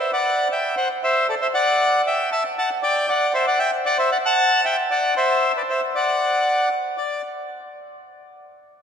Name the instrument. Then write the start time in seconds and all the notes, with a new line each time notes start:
bandoneon
0.00 C5 E5
0.13 D5 F#5
0.52 E5 G5
0.77 C5 F#5
1.04 C5 E5
1.29 A4 D5
1.41 C5 E5
1.54 D5 F#5
2.07 E5 G5
2.32 E5 A5
2.58 F#5 A5
2.83 D5 G5
3.09 D5 F#5
3.34 C5 E5
3.47 D5 F#5
3.59 E5 G5
3.86 D5 F#5
3.98 C5 E5
4.11 D5 F#5
4.25 F#5 A5
4.65 E5 G5
4.91 D5 F#5
5.17 C5 E5
5.57 B4 D5
5.69 C5 E5
5.95 D5 F#5
6.98 D5